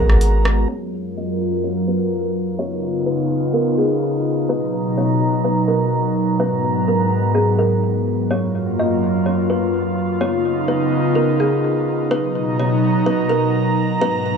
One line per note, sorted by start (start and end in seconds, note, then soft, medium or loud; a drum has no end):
0.00 0.66 G#1 loud
0.00 0.67 G#3 medium
0.00 0.67 B3 medium
0.00 0.67 F#4 medium
0.00 0.65 A#4 medium
0.00 0.65 A#5 medium
0.09 cross-stick medium
0.21 closed hi-hat medium
0.45 cross-stick loud
0.69 2.57 F#2 medium
0.69 2.57 F#3 medium
0.69 2.57 F4 medium
0.69 2.57 A#4 medium
0.69 1.13 C#5 loud
1.17 1.62 D#5 medium
1.64 1.86 C#5 medium
1.88 2.10 B4 medium
2.59 4.48 C#3 medium
2.59 4.48 B3 medium
2.59 6.36 D#4 medium
2.59 4.48 F4 medium
2.59 3.04 C#5 loud
3.06 3.51 B4 medium
3.53 3.76 A#4 medium
3.78 4.01 G#4 medium
4.49 6.38 B2 medium
4.49 8.27 F#3 medium
4.49 4.94 B4 loud
4.49 6.38 A#5 medium
4.98 5.42 C#5 medium
5.44 5.67 B4 medium
5.68 5.91 A#4 medium
6.40 8.29 G#2 medium
6.40 8.29 B3 medium
6.40 6.85 B4 loud
6.40 8.29 A#5 medium
6.88 7.33 A#4 medium
7.35 7.58 G#4 medium
7.59 8.26 A#4 medium
8.30 10.19 F#2 medium
8.30 10.19 F#3 medium
8.30 10.19 A#3 medium
8.30 12.08 F4 medium
8.30 8.75 C#5 loud
8.79 9.24 D#5 medium
9.26 9.48 C#5 medium
9.50 9.72 B4 medium
10.21 12.09 C#3 medium
10.21 12.09 B3 medium
10.21 12.09 D#4 medium
10.21 10.66 C#5 loud
10.68 11.13 B4 medium
11.15 11.38 A#4 medium
11.40 11.63 G#4 medium
12.11 14.00 B2 medium
12.11 14.00 F#3 medium
12.11 14.00 D#4 medium
12.11 12.56 B4 loud
12.11 14.37 A#5 medium
12.60 13.04 C#5 medium
13.06 13.29 B4 medium
13.29 13.53 A#4 medium
14.01 14.37 G#2 medium
14.01 14.37 F#3 medium
14.01 14.37 B3 medium
14.01 14.37 B4 loud